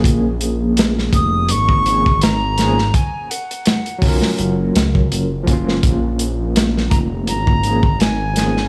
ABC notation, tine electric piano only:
X:1
M:4/4
L:1/8
Q:"Swing 16ths" 1/4=83
K:Bbm
V:1 name="Tine electric piano"
[F,B,DA]4- [F,B,DA] [F,B,DA] z [F,B,DA] | z3 [^F,D=FB]4 [=F,B,DF]- | [F,B,DF]4- [F,B,DF] [F,B,DA] z [F,B,DA] |]